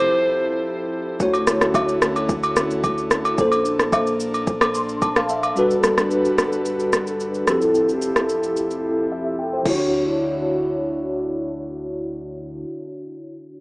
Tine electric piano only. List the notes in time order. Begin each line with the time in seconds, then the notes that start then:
1.19 D3 A3 E4 F#4 C#5
3.37 A#2 A#3 D4 A4 C5
4.75 C6
5.02 A5
5.17 F5
5.30 E5
5.55 G3 D4 F#4 A4 B4
7.46 F3 C4 E4 G4 A4
9.12 E5
9.39 G5
9.53 G4 C5
9.63 D3 D4 E4
9.68 F#4 C#5